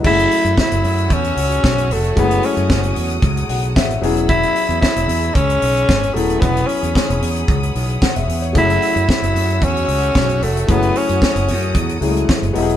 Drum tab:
CC |x---------------|----------------|----------------|----------------|
HH |-xox-xoxxxox-xox|xxox-xoxxxox-xox|xxox-xoxxxox-xox|xxox-xoxxxox-xox|
SD |----o-------o---|----o-------o---|----o-------o---|----o-------o---|
BD |o---o---o---o---|o---o---o---o---|o---o---o---o---|o---o---o---o---|

CC |----------------|----------------|
HH |xxox-xoxxxox-xox|xxox-xoxxxox-xox|
SD |----o-------o---|----o-------o---|
BD |o---o---o---o---|o---o---o---o---|